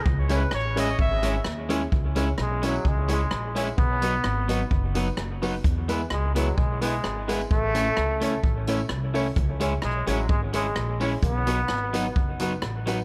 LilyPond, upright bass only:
\new Staff \with { instrumentName = "Upright bass" } { \clef bass \time 4/4 \key cis \minor \tempo 4 = 129 cis,4 a,,4 gis,,4 dis,4 | cis,4 b,,4 cis,4 ais,,4 | b,,4 gis,,4 fis,,4 fis,,4 | e,4 cis,4 b,,4 gis,,4 |
a,,4 cis,4 a,,4 bis,,4 | cis,4 b,,8 a,,8 gis,,4 ais,,4 | b,,4 gis,,4 fis,,4 a,,4 | }